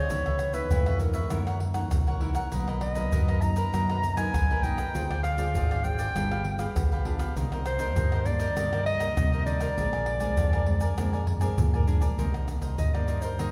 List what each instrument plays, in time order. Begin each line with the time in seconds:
Already playing: clarinet C#5
0.10 fingered electric bass C#2, nylon-string guitar C#3 E3 B3 D#4, cavaquinho E4 B4 C#5 E5, pandeiro, shaker, surdo
0.26 fingered electric bass C#2, cavaquinho B4 C#5 E5, pandeiro, tamborim, shaker
0.39 pandeiro, tamborim, shaker
0.53 nylon-string guitar E3 B3 D#4, clarinet B4, cavaquinho B4 C#5 E5, pandeiro, shaker, surdo
0.71 fingered electric bass F2, nylon-string guitar G#2, cavaquinho E4 B4 C#5 E5, pandeiro, shaker, surdo
0.86 cavaquinho B4 C#5 E5, pandeiro, tamborim, shaker, surdo
0.99 nylon-string guitar E3 B3 D#4, clarinet A#4, muted cavaquinho stroke, pandeiro, shaker
1.14 cavaquinho B4 C#5 E5, pandeiro, shaker
1.30 nylon-string guitar F#2 E3 A#3 D#4, fingered electric bass F#2, cavaquinho E4 A#4 C#5 F#5, pandeiro, tamborim, shaker, surdo
1.47 cavaquinho A#4 C#5 F#5, pandeiro, tamborim, shaker
1.60 muted cavaquinho stroke, pandeiro
1.74 nylon-string guitar E3 A#3 D#4, cavaquinho A#4 C#5 F#5, pandeiro, tamborim, shaker, surdo
1.91 fingered electric bass C2, pandeiro, tamborim, shaker, surdo
2.07 cavaquinho A#4 C#5 F#5, pandeiro, shaker
2.21 nylon-string guitar E3 A#3 D#4, cavaquinho E4 A#4 C#5 F#5, pandeiro
2.35 cavaquinho A#4 C#5 F#5, pandeiro, tamborim, shaker, surdo
2.52 fingered electric bass B1, nylon-string guitar B2 F#3 A#3 D#4, cavaquinho D#4 A#4 B4 D#5, pandeiro, shaker, surdo
2.68 fingered electric bass B1, cavaquinho A#4 B4 D#5, pandeiro, tamborim, shaker
2.81 clarinet D#5, pandeiro, tamborim
2.95 nylon-string guitar F#3 A#3 D#4, cavaquinho A#4 B4 D#5, pandeiro, shaker, surdo
3.12 nylon-string guitar F#2, fingered electric bass F#2, cavaquinho D#4 A#4 B4 D#5, pandeiro, shaker, surdo
3.28 cavaquinho A#4 B4 D#5, pandeiro, tamborim, shaker, surdo
3.42 nylon-string guitar F#3 A#3 D#4, clarinet A#5, muted cavaquinho stroke, pandeiro, shaker
3.56 cavaquinho A#4 B4 D#5, pandeiro, shaker
3.73 fingered electric bass F#2, nylon-string guitar B2 F#3 A#3 D#4, cavaquinho D#4 A#4 B4 D#5, pandeiro, tamborim, shaker, surdo
3.90 cavaquinho A#4 B4 D#5, pandeiro, tamborim, shaker
4.03 muted cavaquinho stroke, pandeiro, shaker, surdo
4.16 nylon-string guitar F#3 A#3 D#4, cavaquinho A#4 B4 D#5, clarinet G#5, pandeiro, tamborim, shaker, surdo
4.33 fingered electric bass B1, nylon-string guitar F#2, pandeiro, tamborim, shaker, surdo
4.50 cavaquinho A#4 B4 D#5, pandeiro, shaker
4.63 nylon-string guitar F#3 A#3 D#4, cavaquinho D#4 A#4 B4 D#5, clarinet G5, pandeiro, shaker
4.78 cavaquinho A#4 B4 D#5, pandeiro, tamborim, shaker, surdo
4.94 fingered electric bass D2, nylon-string guitar D3 C4 F4 G#4, cavaquinho F4 G#4 C5 D5, pandeiro, shaker, surdo
5.10 fingered electric bass D2, cavaquinho G#4 C5 D5, pandeiro, tamborim, shaker
5.23 clarinet F5, pandeiro, tamborim, shaker
5.37 nylon-string guitar C4 F4 G#4, cavaquinho G#4 C5 D5, pandeiro, shaker, surdo
5.54 fingered electric bass G#1, nylon-string guitar D3, cavaquinho F4 G#4 C5 D5, pandeiro, shaker, surdo
5.71 cavaquinho G#4 C5 D5, pandeiro, tamborim, shaker, surdo
5.83 nylon-string guitar C4 F4 G#4, clarinet G5, muted cavaquinho stroke, pandeiro, shaker
5.99 cavaquinho G#4 C5 D5, pandeiro, shaker
6.15 fingered electric bass G1, nylon-string guitar G3 B3 F4 G#4, cavaquinho D4 G4 B4 F5, pandeiro, tamborim, shaker, surdo
6.31 cavaquinho G4 B4 F5, pandeiro, tamborim, shaker
6.44 muted cavaquinho stroke, pandeiro
6.58 nylon-string guitar B3 F4 G#4, cavaquinho G4 B4 F5, pandeiro, tamborim, shaker, surdo
6.76 fingered electric bass B1, nylon-string guitar D3, pandeiro, tamborim, shaker, surdo
6.92 cavaquinho G4 B4 F5, pandeiro, shaker
7.05 nylon-string guitar B3 F4 G#4, cavaquinho D4 G4 B4 F5, pandeiro
7.19 cavaquinho G4 B4 F5, pandeiro, tamborim, shaker, surdo
7.36 fingered electric bass C2, nylon-string guitar C3 D#3 A#3 D4, cavaquinho D#4 A#4 C5 D#5, pandeiro, shaker, surdo
7.52 fingered electric bass C2, cavaquinho A#4 C5 D#5, pandeiro, tamborim, shaker
7.66 clarinet C5, pandeiro, tamborim, shaker
7.78 nylon-string guitar D#3 A#3 D4, cavaquinho A#4 C5 D#5, pandeiro, shaker, surdo
7.95 nylon-string guitar G2, fingered electric bass G2, cavaquinho D#4 A#4 C5 D#5, pandeiro, shaker, surdo
8.12 cavaquinho A#4 C5 D#5, pandeiro, tamborim, shaker, surdo
8.25 nylon-string guitar D#3 A#3 D4, clarinet D5, muted cavaquinho stroke, pandeiro, shaker
8.39 cavaquinho A#4 C5 D#5, pandeiro, shaker
8.56 fingered electric bass G2, nylon-string guitar C3 D#3 A#3 D4, cavaquinho D#4 A#4 C5 D#5, pandeiro, tamborim, shaker, surdo
8.72 cavaquinho A#4 C5 D#5, pandeiro, tamborim, shaker
8.85 clarinet D#5, muted cavaquinho stroke, pandeiro, surdo
8.99 nylon-string guitar D#3 A#3, cavaquinho A#4 C5 D#5, pandeiro, tamborim, shaker, surdo
9.16 nylon-string guitar G2, fingered electric bass C3, pandeiro, tamborim, shaker, surdo
9.32 cavaquinho A#4 C5 D#5, pandeiro, shaker
9.46 nylon-string guitar D#3 A#3 D4, cavaquinho D#4 A#4 C5 D#5, clarinet D5, pandeiro, shaker
9.60 cavaquinho A#4 C5 D#5, pandeiro, tamborim, shaker, surdo
9.76 fingered electric bass A#1, nylon-string guitar A#2 G#3 C4 D4, cavaquinho D4 A#4 D5 G#5, pandeiro, shaker, surdo
9.93 fingered electric bass A#1, cavaquinho A#4 D5 G#5, pandeiro, tamborim, shaker
10.06 pandeiro, tamborim
10.20 nylon-string guitar G#3 C4 D4, cavaquinho A#4 D5 G#5, pandeiro, shaker, surdo
10.37 fingered electric bass F2, nylon-string guitar F3, cavaquinho D4 A#4 D5 G#5, pandeiro, shaker, surdo
10.53 cavaquinho A#4 D5 G#5, pandeiro, tamborim, shaker, surdo
10.66 nylon-string guitar G#3 C4 D4, muted cavaquinho stroke, pandeiro
10.80 cavaquinho A#4 D5 G#5, pandeiro, shaker
10.97 fingered electric bass F2, nylon-string guitar A#2 G#3 C4 D4, cavaquinho D4 A#4 D5 G#5, pandeiro, tamborim, shaker, surdo
11.13 cavaquinho A#4 D5 G#5, pandeiro, shaker
11.27 muted cavaquinho stroke, surdo, pandeiro
11.38 cavaquinho G#5, surdo, pandeiro, shaker
11.41 nylon-string guitar G#3 C4 D4, cavaquinho A#4 D5, surdo
11.48 surdo
11.58 fingered electric bass A#2, nylon-string guitar F3, surdo, pandeiro, shaker
11.74 cavaquinho A#4 D5 G#5, pandeiro, shaker
11.78 surdo
11.87 nylon-string guitar G#3 C4 D4, cavaquinho D4 A#4 D5 G#5, pandeiro, shaker, surdo
11.98 cavaquinho D5 G#5, pandeiro, shaker, surdo
12.02 cavaquinho A#4, surdo
12.09 surdo
12.18 fingered electric bass C2, nylon-string guitar C3 D#3 A#3 D4, cavaquinho D#4 A#4 C5 D#5, pandeiro, shaker, surdo
12.34 cavaquinho A#4 C5 D#5, pandeiro, tamborim, shaker
12.47 nylon-string guitar D#3 A#3 D4, muted cavaquinho stroke, pandeiro, tamborim, shaker
12.61 fingered electric bass C2, cavaquinho A#4 C5 D#5, pandeiro, shaker, surdo
12.78 nylon-string guitar G2, fingered electric bass G2, clarinet D#5, pandeiro, shaker, surdo
12.94 nylon-string guitar D#3 A#3 D4, cavaquinho A#4 C5 D#5, clarinet D5, pandeiro, tamborim, shaker, surdo
13.08 cavaquinho D#4 A#4 C5 D#5, pandeiro, shaker
13.21 cavaquinho A#4 C5 D#5, clarinet C5, pandeiro, shaker
13.39 nylon-string guitar C3 D#3 A#3 D4, cavaquinho D#4 A#4 C5 D#5, pandeiro, tamborim, shaker, surdo